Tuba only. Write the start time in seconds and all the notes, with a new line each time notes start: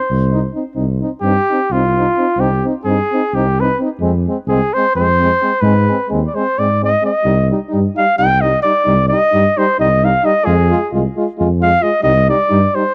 0.10 C2
0.76 C2
1.22 G2
1.70 C2
2.36 C2
2.85 G2
3.33 C2
4.00 F2
4.47 C2
4.95 F2
5.62 G#2
6.11 D#2
6.59 G#2
7.25 C2
7.74 G2
8.19 C2
8.86 C2
9.33 G2
9.80 C2
10.47 F2
10.92 C2
11.40 F2
12.04 C2
12.51 G2